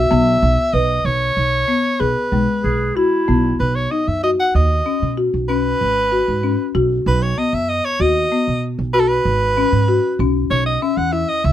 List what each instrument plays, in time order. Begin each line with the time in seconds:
Already playing: soprano saxophone E5
0.11 upright bass B1, marimba B3
0.42 upright bass B1
0.73 upright bass B1, marimba B4, soprano saxophone D#5
1.05 upright bass B1, soprano saxophone C#5
1.37 upright bass B1
1.68 marimba B3
2.00 upright bass B1, marimba G#4, soprano saxophone B4
2.32 upright bass B1, marimba G#3
2.63 upright bass B1, clarinet G#4
2.96 clarinet E4, marimba F#4
3.28 upright bass B1, marimba B3
3.60 upright bass B1, soprano saxophone B4
3.75 soprano saxophone C#5
3.91 marimba D#4, soprano saxophone D#5
4.07 upright bass F#2, soprano saxophone E5
4.23 marimba F#4, soprano saxophone D#5
4.40 soprano saxophone F#5
4.55 upright bass D#2, soprano saxophone D#5
4.86 marimba C#4
5.02 upright bass B2
5.17 marimba F#4
5.34 upright bass B1
5.49 marimba C#4, soprano saxophone B4
5.81 upright bass G#1
6.12 marimba F#4
6.28 upright bass G#2
6.43 marimba C#4
6.75 upright bass B1, marimba F#4
7.06 upright bass B1, soprano saxophone B4
7.23 soprano saxophone C#5
7.38 marimba B3, soprano saxophone D#5
7.53 upright bass F#2, soprano saxophone E5
7.69 soprano saxophone D#5
7.84 soprano saxophone C#5
8.00 upright bass D#2, marimba F#4, soprano saxophone D#5
8.32 marimba B3
8.48 upright bass B2
8.79 upright bass B1
8.93 marimba F#4, soprano saxophone B4
9.00 soprano saxophone A4
9.08 soprano saxophone B4
9.25 upright bass G#1
9.57 marimba C#4
9.72 upright bass G#2
9.88 marimba F#4
10.19 upright bass B1, marimba C#4
10.51 upright bass B1, soprano saxophone C#5
10.66 soprano saxophone D#5
10.82 marimba C#4, soprano saxophone E5
10.97 upright bass E2, soprano saxophone F#5
11.12 marimba E4, soprano saxophone E5
11.28 soprano saxophone D#5
11.44 upright bass C#2, soprano saxophone E5